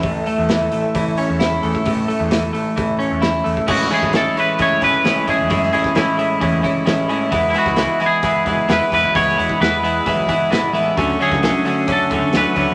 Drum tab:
CC |----------------|----------------|x---------------|----------------|
HH |o-o-o-o-o-o-o-o-|o-o-o-o-o-o-o-o-|--o-o-o-o-o-o-o-|o-o-o-o-o-o-o-o-|
SD |----o-------o---|----o-------o---|-o-oo-------o---|-o-oo-------o---|
BD |o-------o------o|o-------o------o|o--o----o-o---o-|o--o----o-o-----|

CC |----------------|----------------|----------------|
HH |o-o-o-o-o-o-o-o-|o-o-o-o-o-o-o-o-|o-o-o-o-o-o-o-o-|
SD |---oo-------o---|-o--o-------o---|---oo-------o---|
BD |o--o----o-o---o-|o--o----o-o-----|o--o----o-o---o-|